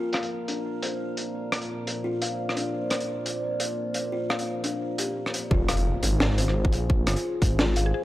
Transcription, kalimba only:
Already playing: F4
0.14 F5
0.48 D4
0.83 C5
2.04 F4
2.22 F5
2.56 D4
2.91 C5
4.12 F4
4.30 F5
4.64 D4
4.99 G4
5.51 F4
5.69 F5
6.03 D#4
6.38 C5
7.59 F4
7.77 F5

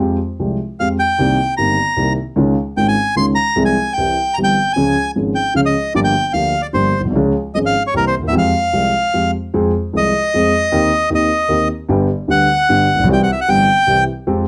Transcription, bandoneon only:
0.80 F5
0.99 G5
1.57 A#5
2.77 G5
2.88 G#5
3.17 C6
3.35 A#5
3.65 G#5
3.93 G5
4.34 A#5
4.44 G5
4.73 G#5
5.35 G5
5.56 F5
5.66 D#5
5.96 D5
6.04 G5
6.33 F5
6.62 D5
6.74 C5
7.55 D#5
7.66 F5
7.87 C#5
7.97 A#4
8.07 C5
8.28 E5
8.38 F5
9.97 D#5
11.15 D#5
12.31 F#5
13.13 G5
13.23 F#5
13.32 E5
13.41 F#5
13.49 G5

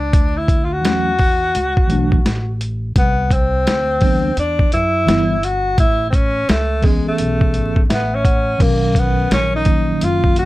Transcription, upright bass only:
0.13 D2
0.84 E2
1.55 C#2
1.90 B1
2.25 A1
2.96 C2
3.66 D2
4.37 E2
4.73 F#2
5.07 G1
5.78 A1
6.49 C#2
7.07 muted upright bass stroke
7.19 B1
7.55 G#1
7.90 A1
8.60 B1
9.31 A#1
10.02 F#1

